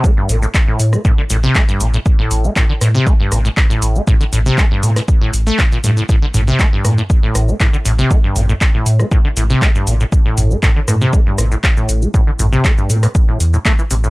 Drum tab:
HH |--o---o---o---o-|--o---o---o---o-|--o---oo--o---o-|--o---o---o---o-|
SH |x-xxx-xxx-xxxxxx|x-xxx-xxx-xxxxxx|xxxxx-xxx-xxxxxx|x-xxx-xxx-xxxxxx|
CP |----x-------x---|----x-------x---|----x-------x---|----x-------x---|
SD |-------r--------|------r---r-----|-------r--------|------r---r-----|
T2 |----------------|----------------|----------------|--o---o---------|
BD |o---o---o---o---|o---o---o---o---|o---o---o---o---|o---o---o---o---|

HH |--o---o---o---o-|--o---o---o---o-|--o---oo--o---o-|
SH |x-xxx-xxx-xxxxxx|x-xxx-xxx-xxxxxx|x-xxxxxxx-xxxxxx|
CP |----x-------x---|----x-------x---|----x-------x---|
SD |-------r--------|------r---r-----|-------r--------|
T2 |--o-------------|--o---o---------|--o-------------|
BD |o---o---o---o---|o---o---o---o---|o---o---o---o---|